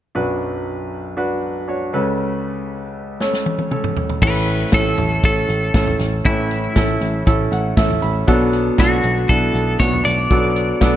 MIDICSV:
0, 0, Header, 1, 5, 480
1, 0, Start_track
1, 0, Tempo, 508044
1, 141, Time_signature, 4, 2, 24, 8
1, 10359, End_track
2, 0, Start_track
2, 0, Title_t, "Clean electric guitar"
2, 0, Program_c, 0, 27
2, 3996, Note_on_c, 0, 71, 97
2, 4439, Note_off_c, 0, 71, 0
2, 4481, Note_on_c, 0, 69, 84
2, 4950, Note_off_c, 0, 69, 0
2, 4962, Note_on_c, 0, 69, 76
2, 5636, Note_off_c, 0, 69, 0
2, 5914, Note_on_c, 0, 64, 102
2, 6831, Note_off_c, 0, 64, 0
2, 8312, Note_on_c, 0, 66, 72
2, 8780, Note_on_c, 0, 69, 89
2, 8801, Note_off_c, 0, 66, 0
2, 9252, Note_off_c, 0, 69, 0
2, 9256, Note_on_c, 0, 73, 90
2, 9491, Note_off_c, 0, 73, 0
2, 9495, Note_on_c, 0, 74, 99
2, 10359, Note_off_c, 0, 74, 0
2, 10359, End_track
3, 0, Start_track
3, 0, Title_t, "Grand piano"
3, 0, Program_c, 1, 0
3, 140, Note_on_c, 1, 62, 64
3, 143, Note_on_c, 1, 42, 49
3, 143, Note_on_c, 1, 66, 56
3, 144, Note_on_c, 1, 35, 49
3, 147, Note_on_c, 1, 71, 70
3, 332, Control_c, 1, 64, 127
3, 1052, Note_off_c, 1, 62, 0
3, 1054, Note_off_c, 1, 66, 0
3, 1055, Note_off_c, 1, 71, 0
3, 1103, Note_on_c, 1, 62, 59
3, 1107, Note_on_c, 1, 66, 59
3, 1112, Note_on_c, 1, 71, 68
3, 1559, Note_off_c, 1, 62, 0
3, 1561, Note_off_c, 1, 66, 0
3, 1563, Note_off_c, 1, 71, 0
3, 1584, Note_on_c, 1, 62, 53
3, 1590, Note_on_c, 1, 66, 46
3, 1593, Note_on_c, 1, 73, 55
3, 1789, Note_off_c, 1, 42, 0
3, 1790, Note_off_c, 1, 35, 0
3, 1824, Note_on_c, 1, 61, 69
3, 1825, Note_off_c, 1, 62, 0
3, 1827, Note_on_c, 1, 49, 57
3, 1828, Note_off_c, 1, 66, 0
3, 1830, Note_off_c, 1, 73, 0
3, 1830, Note_on_c, 1, 37, 54
3, 1830, Note_on_c, 1, 69, 62
3, 1832, Note_on_c, 1, 71, 73
3, 1838, Control_c, 1, 64, 0
3, 2009, Control_c, 1, 64, 127
3, 2735, Note_off_c, 1, 61, 0
3, 2738, Note_off_c, 1, 69, 0
3, 2739, Note_off_c, 1, 71, 0
3, 3026, Note_on_c, 1, 61, 62
3, 3031, Note_on_c, 1, 69, 60
3, 3035, Note_on_c, 1, 73, 68
3, 3482, Note_off_c, 1, 61, 0
3, 3484, Note_off_c, 1, 69, 0
3, 3486, Note_off_c, 1, 73, 0
3, 3503, Note_on_c, 1, 61, 51
3, 3509, Note_on_c, 1, 69, 49
3, 3514, Note_on_c, 1, 73, 56
3, 3711, Note_off_c, 1, 49, 0
3, 3713, Note_off_c, 1, 37, 0
3, 3960, Note_off_c, 1, 61, 0
3, 3963, Note_off_c, 1, 69, 0
3, 3966, Note_off_c, 1, 73, 0
3, 3985, Note_on_c, 1, 61, 70
3, 3990, Note_on_c, 1, 64, 62
3, 3991, Note_on_c, 1, 45, 59
3, 3992, Note_on_c, 1, 52, 58
3, 3993, Note_on_c, 1, 69, 81
3, 4003, Control_c, 1, 64, 0
3, 4157, Control_c, 1, 64, 127
3, 4441, Note_off_c, 1, 61, 0
3, 4444, Note_off_c, 1, 64, 0
3, 4445, Note_off_c, 1, 69, 0
3, 4466, Note_on_c, 1, 61, 68
3, 4468, Note_on_c, 1, 64, 65
3, 4472, Note_on_c, 1, 69, 74
3, 4672, Note_off_c, 1, 45, 0
3, 4673, Note_off_c, 1, 52, 0
3, 4921, Note_off_c, 1, 61, 0
3, 4923, Note_off_c, 1, 64, 0
3, 4924, Note_off_c, 1, 69, 0
3, 4948, Note_on_c, 1, 61, 68
3, 4954, Note_on_c, 1, 64, 59
3, 4958, Note_on_c, 1, 69, 75
3, 5402, Note_off_c, 1, 61, 0
3, 5405, Note_off_c, 1, 64, 0
3, 5407, Note_off_c, 1, 69, 0
3, 5427, Note_on_c, 1, 61, 60
3, 5433, Note_on_c, 1, 64, 54
3, 5436, Note_on_c, 1, 69, 65
3, 5881, Note_off_c, 1, 61, 0
3, 5884, Note_off_c, 1, 64, 0
3, 5886, Note_off_c, 1, 69, 0
3, 5910, Note_on_c, 1, 61, 69
3, 5911, Note_on_c, 1, 52, 63
3, 5913, Note_on_c, 1, 45, 64
3, 5914, Note_on_c, 1, 64, 61
3, 5918, Note_on_c, 1, 69, 74
3, 6362, Note_off_c, 1, 61, 0
3, 6364, Note_off_c, 1, 64, 0
3, 6366, Note_off_c, 1, 69, 0
3, 6386, Note_on_c, 1, 61, 67
3, 6393, Note_on_c, 1, 64, 59
3, 6394, Note_on_c, 1, 69, 76
3, 6590, Note_off_c, 1, 52, 0
3, 6591, Note_off_c, 1, 45, 0
3, 6840, Note_off_c, 1, 61, 0
3, 6843, Note_off_c, 1, 64, 0
3, 6844, Note_off_c, 1, 69, 0
3, 6861, Note_on_c, 1, 61, 74
3, 6865, Note_on_c, 1, 64, 70
3, 6869, Note_on_c, 1, 69, 88
3, 7106, Note_on_c, 1, 78, 68
3, 7317, Note_off_c, 1, 61, 0
3, 7319, Note_off_c, 1, 64, 0
3, 7321, Note_off_c, 1, 69, 0
3, 7329, Note_off_c, 1, 78, 0
3, 7337, Note_on_c, 1, 61, 70
3, 7339, Note_on_c, 1, 64, 64
3, 7342, Note_on_c, 1, 76, 57
3, 7343, Note_on_c, 1, 69, 75
3, 7566, Note_off_c, 1, 76, 0
3, 7579, Note_on_c, 1, 83, 63
3, 7794, Note_off_c, 1, 61, 0
3, 7796, Note_off_c, 1, 64, 0
3, 7798, Note_off_c, 1, 69, 0
3, 7805, Note_off_c, 1, 83, 0
3, 7817, Note_on_c, 1, 59, 83
3, 7821, Note_on_c, 1, 47, 77
3, 7821, Note_on_c, 1, 54, 69
3, 7822, Note_on_c, 1, 62, 78
3, 7825, Note_on_c, 1, 69, 97
3, 7836, Control_c, 1, 64, 0
3, 8024, Control_c, 1, 64, 127
3, 8274, Note_off_c, 1, 59, 0
3, 8277, Note_off_c, 1, 62, 0
3, 8278, Note_off_c, 1, 69, 0
3, 8295, Note_on_c, 1, 59, 73
3, 8300, Note_on_c, 1, 62, 66
3, 8304, Note_on_c, 1, 69, 79
3, 8503, Note_off_c, 1, 47, 0
3, 8504, Note_off_c, 1, 54, 0
3, 8753, Note_off_c, 1, 59, 0
3, 8755, Note_off_c, 1, 62, 0
3, 8757, Note_off_c, 1, 69, 0
3, 8776, Note_on_c, 1, 59, 66
3, 8781, Note_on_c, 1, 62, 64
3, 8782, Note_on_c, 1, 64, 70
3, 9233, Note_off_c, 1, 59, 0
3, 9235, Note_off_c, 1, 62, 0
3, 9236, Note_off_c, 1, 64, 0
3, 9254, Note_on_c, 1, 59, 59
3, 9258, Note_on_c, 1, 62, 52
3, 9263, Note_on_c, 1, 66, 70
3, 9711, Note_off_c, 1, 59, 0
3, 9713, Note_off_c, 1, 62, 0
3, 9715, Note_off_c, 1, 66, 0
3, 9741, Note_on_c, 1, 59, 71
3, 9742, Note_on_c, 1, 47, 64
3, 9743, Note_on_c, 1, 54, 60
3, 9743, Note_on_c, 1, 62, 61
3, 9748, Note_on_c, 1, 69, 74
3, 10194, Note_off_c, 1, 59, 0
3, 10195, Note_off_c, 1, 62, 0
3, 10198, Note_off_c, 1, 69, 0
3, 10217, Note_on_c, 1, 59, 79
3, 10221, Note_on_c, 1, 62, 72
3, 10224, Note_on_c, 1, 69, 84
3, 10359, Note_off_c, 1, 47, 0
3, 10359, Note_off_c, 1, 54, 0
3, 10359, Note_off_c, 1, 59, 0
3, 10359, Note_off_c, 1, 62, 0
3, 10359, Note_off_c, 1, 69, 0
3, 10359, End_track
4, 0, Start_track
4, 0, Title_t, "Picked electric bass"
4, 0, Program_c, 2, 34
4, 3985, Note_on_c, 2, 33, 91
4, 4380, Note_off_c, 2, 33, 0
4, 4468, Note_on_c, 2, 33, 99
4, 4665, Note_off_c, 2, 33, 0
4, 4705, Note_on_c, 2, 33, 86
4, 4903, Note_off_c, 2, 33, 0
4, 4947, Note_on_c, 2, 33, 86
4, 5144, Note_off_c, 2, 33, 0
4, 5183, Note_on_c, 2, 33, 88
4, 5382, Note_off_c, 2, 33, 0
4, 5425, Note_on_c, 2, 33, 89
4, 5623, Note_off_c, 2, 33, 0
4, 5663, Note_on_c, 2, 33, 80
4, 5862, Note_off_c, 2, 33, 0
4, 5907, Note_on_c, 2, 33, 101
4, 6300, Note_off_c, 2, 33, 0
4, 6389, Note_on_c, 2, 33, 102
4, 6585, Note_off_c, 2, 33, 0
4, 6625, Note_on_c, 2, 33, 80
4, 6822, Note_off_c, 2, 33, 0
4, 6867, Note_on_c, 2, 33, 88
4, 7063, Note_off_c, 2, 33, 0
4, 7103, Note_on_c, 2, 33, 88
4, 7300, Note_off_c, 2, 33, 0
4, 7342, Note_on_c, 2, 33, 86
4, 7540, Note_off_c, 2, 33, 0
4, 7585, Note_on_c, 2, 33, 77
4, 7781, Note_off_c, 2, 33, 0
4, 7822, Note_on_c, 2, 35, 95
4, 8216, Note_off_c, 2, 35, 0
4, 8302, Note_on_c, 2, 35, 89
4, 8499, Note_off_c, 2, 35, 0
4, 8540, Note_on_c, 2, 35, 88
4, 8737, Note_off_c, 2, 35, 0
4, 8779, Note_on_c, 2, 35, 89
4, 8977, Note_off_c, 2, 35, 0
4, 9013, Note_on_c, 2, 35, 86
4, 9213, Note_off_c, 2, 35, 0
4, 9256, Note_on_c, 2, 35, 91
4, 9455, Note_off_c, 2, 35, 0
4, 9497, Note_on_c, 2, 35, 89
4, 9695, Note_off_c, 2, 35, 0
4, 9737, Note_on_c, 2, 35, 86
4, 10131, Note_off_c, 2, 35, 0
4, 10217, Note_on_c, 2, 35, 96
4, 10359, Note_off_c, 2, 35, 0
4, 10359, End_track
5, 0, Start_track
5, 0, Title_t, "Drums"
5, 3028, Note_on_c, 9, 38, 49
5, 3123, Note_off_c, 9, 38, 0
5, 3150, Note_on_c, 9, 38, 41
5, 3244, Note_off_c, 9, 38, 0
5, 3270, Note_on_c, 9, 48, 56
5, 3364, Note_off_c, 9, 48, 0
5, 3387, Note_on_c, 9, 48, 53
5, 3481, Note_off_c, 9, 48, 0
5, 3508, Note_on_c, 9, 47, 66
5, 3603, Note_off_c, 9, 47, 0
5, 3629, Note_on_c, 9, 45, 63
5, 3723, Note_off_c, 9, 45, 0
5, 3747, Note_on_c, 9, 43, 75
5, 3842, Note_off_c, 9, 43, 0
5, 3869, Note_on_c, 9, 43, 62
5, 3964, Note_off_c, 9, 43, 0
5, 3987, Note_on_c, 9, 36, 92
5, 3987, Note_on_c, 9, 49, 79
5, 4082, Note_off_c, 9, 36, 0
5, 4082, Note_off_c, 9, 49, 0
5, 4226, Note_on_c, 9, 42, 63
5, 4321, Note_off_c, 9, 42, 0
5, 4457, Note_on_c, 9, 42, 77
5, 4462, Note_on_c, 9, 38, 106
5, 4468, Note_on_c, 9, 36, 101
5, 4552, Note_off_c, 9, 42, 0
5, 4556, Note_off_c, 9, 38, 0
5, 4563, Note_off_c, 9, 36, 0
5, 4584, Note_on_c, 9, 42, 52
5, 4678, Note_off_c, 9, 42, 0
5, 4700, Note_on_c, 9, 42, 67
5, 4705, Note_on_c, 9, 43, 60
5, 4794, Note_off_c, 9, 42, 0
5, 4800, Note_off_c, 9, 43, 0
5, 4947, Note_on_c, 9, 42, 91
5, 4948, Note_on_c, 9, 36, 106
5, 5042, Note_off_c, 9, 36, 0
5, 5042, Note_off_c, 9, 42, 0
5, 5190, Note_on_c, 9, 42, 71
5, 5284, Note_off_c, 9, 42, 0
5, 5424, Note_on_c, 9, 42, 93
5, 5426, Note_on_c, 9, 36, 110
5, 5427, Note_on_c, 9, 38, 102
5, 5519, Note_off_c, 9, 42, 0
5, 5521, Note_off_c, 9, 36, 0
5, 5522, Note_off_c, 9, 38, 0
5, 5548, Note_on_c, 9, 43, 61
5, 5643, Note_off_c, 9, 43, 0
5, 5662, Note_on_c, 9, 42, 70
5, 5668, Note_on_c, 9, 38, 34
5, 5756, Note_off_c, 9, 42, 0
5, 5763, Note_off_c, 9, 38, 0
5, 5905, Note_on_c, 9, 42, 80
5, 5908, Note_on_c, 9, 36, 99
5, 6000, Note_off_c, 9, 42, 0
5, 6002, Note_off_c, 9, 36, 0
5, 6149, Note_on_c, 9, 42, 69
5, 6244, Note_off_c, 9, 42, 0
5, 6382, Note_on_c, 9, 42, 84
5, 6387, Note_on_c, 9, 38, 109
5, 6390, Note_on_c, 9, 36, 97
5, 6477, Note_off_c, 9, 42, 0
5, 6481, Note_off_c, 9, 38, 0
5, 6485, Note_off_c, 9, 36, 0
5, 6625, Note_on_c, 9, 42, 67
5, 6720, Note_off_c, 9, 42, 0
5, 6868, Note_on_c, 9, 36, 109
5, 6869, Note_on_c, 9, 42, 95
5, 6963, Note_off_c, 9, 36, 0
5, 6963, Note_off_c, 9, 42, 0
5, 7110, Note_on_c, 9, 42, 67
5, 7204, Note_off_c, 9, 42, 0
5, 7342, Note_on_c, 9, 42, 91
5, 7343, Note_on_c, 9, 36, 108
5, 7345, Note_on_c, 9, 38, 109
5, 7437, Note_off_c, 9, 42, 0
5, 7438, Note_off_c, 9, 36, 0
5, 7439, Note_off_c, 9, 38, 0
5, 7468, Note_on_c, 9, 43, 57
5, 7562, Note_off_c, 9, 43, 0
5, 7578, Note_on_c, 9, 42, 67
5, 7673, Note_off_c, 9, 42, 0
5, 7821, Note_on_c, 9, 42, 87
5, 7823, Note_on_c, 9, 36, 92
5, 7915, Note_off_c, 9, 42, 0
5, 7917, Note_off_c, 9, 36, 0
5, 8060, Note_on_c, 9, 42, 73
5, 8154, Note_off_c, 9, 42, 0
5, 8295, Note_on_c, 9, 42, 82
5, 8300, Note_on_c, 9, 38, 108
5, 8303, Note_on_c, 9, 36, 97
5, 8389, Note_off_c, 9, 42, 0
5, 8394, Note_off_c, 9, 38, 0
5, 8398, Note_off_c, 9, 36, 0
5, 8418, Note_on_c, 9, 42, 51
5, 8513, Note_off_c, 9, 42, 0
5, 8534, Note_on_c, 9, 42, 64
5, 8629, Note_off_c, 9, 42, 0
5, 8780, Note_on_c, 9, 36, 107
5, 8780, Note_on_c, 9, 42, 89
5, 8875, Note_off_c, 9, 36, 0
5, 8875, Note_off_c, 9, 42, 0
5, 9024, Note_on_c, 9, 42, 67
5, 9118, Note_off_c, 9, 42, 0
5, 9256, Note_on_c, 9, 42, 88
5, 9258, Note_on_c, 9, 36, 109
5, 9259, Note_on_c, 9, 38, 105
5, 9351, Note_off_c, 9, 42, 0
5, 9352, Note_off_c, 9, 36, 0
5, 9353, Note_off_c, 9, 38, 0
5, 9381, Note_on_c, 9, 43, 57
5, 9476, Note_off_c, 9, 43, 0
5, 9494, Note_on_c, 9, 42, 69
5, 9500, Note_on_c, 9, 38, 36
5, 9588, Note_off_c, 9, 42, 0
5, 9595, Note_off_c, 9, 38, 0
5, 9738, Note_on_c, 9, 36, 92
5, 9738, Note_on_c, 9, 42, 79
5, 9833, Note_off_c, 9, 36, 0
5, 9833, Note_off_c, 9, 42, 0
5, 9978, Note_on_c, 9, 42, 69
5, 10072, Note_off_c, 9, 42, 0
5, 10211, Note_on_c, 9, 42, 81
5, 10215, Note_on_c, 9, 38, 112
5, 10219, Note_on_c, 9, 36, 93
5, 10305, Note_off_c, 9, 42, 0
5, 10310, Note_off_c, 9, 38, 0
5, 10314, Note_off_c, 9, 36, 0
5, 10359, End_track
0, 0, End_of_file